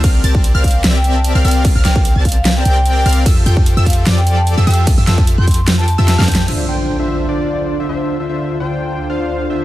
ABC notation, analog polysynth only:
X:1
M:4/4
L:1/16
Q:"Swing 16ths" 1/4=149
K:Dm
V:1 name="Analog polysynth"
[CGBdf]2 [CGBda]3 [CGBdf]3 [CGBde]4- [CGBde] [CGBdf] [CGBdf]2- | [CGBdf] [CGBdf] [CGBdf]3 [CGBda]4- [CGBda] [CGBdg]4 [CGBdf]2 | [F,FGAe]2 [F,FGAg]3 [F,FGAe]3 [F,FGAd]4- [F,FGAd] [F,FGAe] [F,FGAe]2- | [F,FGAe] [F,FGAe] [F,FGAe]3 [F,FGAg]4- [F,FGAg] z [F,FGAe]2 [F,FGAf] [F,FGAg]2 |
[D,DFce]2 [D,DFcg]3 [D,DFce]3 [D,DFcd]4- [D,DFcd] [D,DFce] [D,DFce]2- | [D,DFce] [D,DFce] [D,DFce]3 [D,DFcg]4- [D,DFcg] [D,DFcf]4 [D,DFce]2 |]